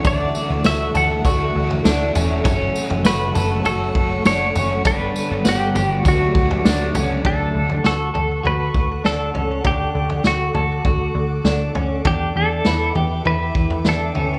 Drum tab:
TB |x-x-x-x-x---x-x-|x-x-x-x-x---x-x-|x-x-x-x-x---x-x-|----------------|
SD |----o-------o---|----o-------o---|----o-------o---|----o-------o---|
FT |o-----o-o--o--o-|o--o--o-o-----o-|o-----o-o--o--o-|o--o--o-o-----o-|
BD |o-------o-------|o---------o-----|o-------o-o-----|o---------o-----|

TB |----------------|----------------|
SD |----o-------o---|----o-------o---|
FT |o--o--o-o-----o-|o-----o-o--o--o-|
BD |o-------o-------|o---------o-----|